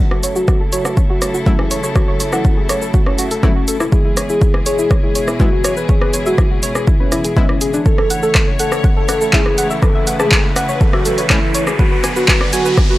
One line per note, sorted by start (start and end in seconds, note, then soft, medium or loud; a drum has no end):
0.00 3.88 C#3 medium
0.00 3.88 F#3 medium
0.00 3.88 A3 medium
0.00 3.88 E4 medium
0.00 0.24 F#4 loud
0.00 3.88 A4 medium
0.11 0.15 F#4 medium
0.11 cross-stick soft
0.23 0.30 C#5 medium
0.23 closed hi-hat loud
0.23 shaker medium
0.36 0.42 F#4 medium
0.36 0.61 F#4 medium
0.36 shaker soft
0.48 0.52 F#4 medium
0.48 kick loud
0.48 cross-stick medium
0.48 shaker soft
0.60 0.66 A4 medium
0.72 0.98 F#4 medium
0.72 0.82 C#5 loud
0.72 closed hi-hat loud
0.72 shaker medium
0.85 0.94 F#4 medium
0.85 cross-stick medium
0.85 shaker soft
0.97 1.03 C#5 medium
0.97 kick loud
0.97 shaker soft
1.10 1.13 F#4 medium
1.10 1.35 F#4 medium
1.22 1.28 C#5 medium
1.22 cross-stick soft
1.22 closed hi-hat loud
1.22 shaker medium
1.34 1.40 F#4 medium
1.34 shaker soft
1.46 1.55 F#3 medium
1.46 1.55 A3 medium
1.46 1.56 C#4 medium
1.46 1.81 E4 loud
1.46 1.55 E4 loud
1.46 kick loud
1.46 shaker soft
1.59 1.65 G#4 medium
1.59 cross-stick soft
1.71 1.80 C#5 loud
1.71 closed hi-hat loud
1.71 shaker medium
1.83 1.89 C#5 medium
1.83 shaker soft
1.96 2.21 F#4 medium
1.96 2.02 C#5 medium
1.96 kick loud
1.96 cross-stick soft
1.96 shaker soft
2.08 2.12 C#5 loud
2.20 2.26 C#5 medium
2.20 closed hi-hat loud
2.20 shaker medium
2.33 2.58 E4 loud
2.33 2.39 F#5 medium
2.33 cross-stick medium
2.33 shaker soft
2.45 2.51 F#4 medium
2.45 kick loud
2.45 shaker soft
2.57 2.63 G#4 medium
2.69 2.79 C#5 loud
2.69 cross-stick soft
2.69 closed hi-hat loud
2.69 shaker medium
2.82 2.85 A4 medium
2.82 shaker soft
2.94 2.98 F#4 medium
2.94 kick loud
2.94 shaker soft
3.06 3.32 C#4 loud
3.06 3.10 C#5 medium
3.06 cross-stick soft
3.19 3.25 F#4 loud
3.19 closed hi-hat loud
3.19 shaker medium
3.31 3.37 A4 medium
3.31 closed hi-hat medium
3.31 shaker soft
3.43 3.52 F#3 loud
3.43 3.52 A3 medium
3.43 3.77 C#4 loud
3.43 3.52 E4 loud
3.43 3.49 F#4 medium
3.43 kick loud
3.43 cross-stick medium
3.43 shaker soft
3.56 3.62 F#4 medium
3.68 3.77 A4 loud
3.68 closed hi-hat loud
3.68 shaker medium
3.80 3.86 E4 loud
3.80 cross-stick soft
3.80 shaker soft
3.92 7.82 B2 medium
3.92 11.75 E3 medium
3.92 7.82 G#3 medium
3.92 7.82 E4 medium
3.92 3.96 E4 medium
3.92 4.18 G#4 loud
3.92 7.82 G#4 medium
3.92 kick loud
3.92 shaker soft
4.05 4.08 E4 medium
4.17 4.23 C#5 medium
4.17 cross-stick medium
4.17 closed hi-hat loud
4.17 shaker medium
4.29 4.35 E4 medium
4.29 4.55 G#4 medium
4.29 shaker soft
4.42 4.45 E4 medium
4.42 kick loud
4.42 shaker soft
4.54 4.60 G#4 medium
4.54 cross-stick medium
4.66 4.92 G#4 medium
4.66 4.75 C#5 loud
4.66 closed hi-hat loud
4.66 shaker medium
4.79 4.88 E4 medium
4.79 shaker soft
4.91 4.97 C#5 medium
4.91 kick loud
4.91 cross-stick medium
4.91 shaker soft
5.03 5.07 E4 medium
5.03 5.29 G#4 medium
5.15 5.21 C#5 medium
5.15 closed hi-hat loud
5.15 shaker medium
5.28 5.34 E4 medium
5.28 cross-stick medium
5.28 shaker soft
5.40 5.49 G#3 loud
5.40 5.49 B3 medium
5.40 5.49 E4 loud
5.40 5.74 F#4 loud
5.40 kick loud
5.40 shaker soft
5.52 5.58 F#4 medium
5.64 5.74 C#5 loud
5.64 cross-stick medium
5.64 closed hi-hat loud
5.64 shaker medium
5.77 5.83 B4 medium
5.77 shaker soft
5.89 6.15 G#4 medium
5.89 5.95 C#5 medium
5.89 kick loud
5.89 shaker soft
6.02 6.05 B4 loud
6.02 cross-stick medium
6.14 6.20 C#5 medium
6.14 closed hi-hat loud
6.14 shaker medium
6.26 6.52 F#4 loud
6.26 6.32 E5 medium
6.26 shaker soft
6.38 6.44 E4 medium
6.38 kick loud
6.38 cross-stick medium
6.38 shaker soft
6.51 6.57 F#4 medium
6.63 6.72 C#5 loud
6.63 closed hi-hat loud
6.63 shaker medium
6.75 6.79 G#4 medium
6.75 cross-stick medium
6.75 shaker soft
6.87 6.91 E4 medium
6.87 kick loud
6.87 shaker soft
7.00 7.25 C#4 loud
7.00 7.04 B4 medium
7.12 7.18 E4 loud
7.12 cross-stick medium
7.12 closed hi-hat loud
7.12 shaker medium
7.24 7.30 G#4 medium
7.24 closed hi-hat medium
7.24 shaker soft
7.36 7.45 G#3 loud
7.36 7.45 B3 medium
7.36 7.71 C#4 medium
7.36 7.43 E4 medium
7.36 7.45 E4 loud
7.36 kick loud
7.36 shaker soft
7.49 7.55 E4 medium
7.49 cross-stick medium
7.61 7.70 G#4 loud
7.61 closed hi-hat loud
7.61 shaker medium
7.74 7.80 D4 loud
7.74 shaker soft
7.86 11.75 C#3 medium
7.86 11.75 A3 medium
7.86 11.75 E4 medium
7.86 8.11 A4 loud
7.86 7.89 A4 loud
7.86 9.81 C#5 medium
7.86 kick loud
7.86 riser medium
7.86 shaker soft
7.98 8.02 A4 medium
7.98 cross-stick medium
8.10 8.16 F#5 medium
8.10 closed hi-hat loud
8.10 shaker medium
8.23 8.48 A4 loud
8.23 8.29 A4 medium
8.23 shaker soft
8.35 8.39 A4 medium
8.35 kick loud
8.35 cross-stick medium
8.35 clap loud
8.35 shaker soft
8.47 8.53 C#5 medium
8.59 8.85 A4 loud
8.59 8.69 F#5 loud
8.59 closed hi-hat loud
8.59 shaker medium
8.72 8.81 A4 medium
8.72 cross-stick medium
8.72 shaker soft
8.84 8.90 F#5 medium
8.84 kick loud
8.84 shaker soft
8.97 9.22 A4 medium
8.97 9.00 A4 medium
9.09 9.15 F#5 medium
9.09 cross-stick medium
9.09 closed hi-hat loud
9.09 shaker medium
9.21 9.27 A4 medium
9.21 shaker soft
9.33 9.42 A3 medium
9.33 9.42 C#4 medium
9.33 9.43 E4 medium
9.33 9.42 E4 loud
9.33 9.67 G#4 loud
9.33 kick loud
9.33 clap loud
9.33 shaker soft
9.46 9.52 B4 medium
9.46 cross-stick medium
9.58 9.67 F#5 loud
9.58 closed hi-hat loud
9.58 shaker medium
9.70 9.76 E5 medium
9.70 shaker soft
9.82 10.08 A4 medium
9.82 9.86 B4 medium
9.82 11.77 B4 medium
9.82 kick loud
9.82 cross-stick medium
9.82 shaker soft
9.95 9.99 E5 loud
10.07 10.13 F#5 medium
10.07 closed hi-hat loud
10.07 shaker medium
10.19 10.45 G#4 loud
10.19 10.26 A5 medium
10.19 cross-stick medium
10.19 shaker soft
10.32 10.38 A4 medium
10.32 kick loud
10.32 clap loud
10.32 shaker soft
10.44 10.50 B4 medium
10.56 10.65 F#5 loud
10.56 cross-stick medium
10.56 closed hi-hat loud
10.56 shaker medium
10.69 10.72 C#5 medium
10.69 shaker soft
10.81 10.84 A4 medium
10.81 kick loud
10.81 shaker soft
10.93 11.19 F#4 medium
10.93 10.97 E5 medium
10.93 cross-stick medium
11.05 11.12 A4 loud
11.05 closed hi-hat loud
11.05 shaker medium
11.18 11.24 C#5 medium
11.18 closed hi-hat medium
11.18 shaker soft
11.30 11.39 A3 loud
11.30 11.39 C#4 medium
11.30 11.64 E4 loud
11.30 11.39 E4 loud
11.30 11.36 A4 medium
11.30 kick loud
11.30 cross-stick medium
11.30 clap loud
11.30 shaker soft
11.43 11.48 A4 medium
11.55 11.64 C#5 loud
11.55 closed hi-hat loud
11.55 shaker medium
11.67 11.73 G#4 loud
11.67 cross-stick medium
11.67 shaker soft
11.79 12.98 D3 medium
11.79 12.98 F#3 medium
11.79 12.98 B3 medium
11.79 12.05 F#4 loud
11.79 12.98 F#4 medium
11.79 11.83 B4 loud
11.79 12.98 B4 loud
11.79 kick loud
11.79 shaker soft
11.92 11.95 B4 medium
12.04 12.10 G#5 medium
12.04 cross-stick medium
12.04 closed hi-hat loud
12.04 shaker medium
12.16 12.42 F#4 loud
12.16 12.22 B4 medium
12.16 shaker soft
12.28 12.32 B4 medium
12.28 kick loud
12.28 clap loud
12.28 shaker soft
12.41 12.47 D5 medium
12.41 cross-stick medium
12.53 12.78 F#4 medium
12.53 12.62 G#5 loud
12.53 closed hi-hat loud
12.53 shaker medium
12.65 12.74 B4 medium
12.65 shaker soft
12.77 12.84 G#5 medium
12.77 kick loud
12.77 cross-stick medium
12.77 shaker soft
12.90 12.98 F#4 loud
12.90 12.94 B4 medium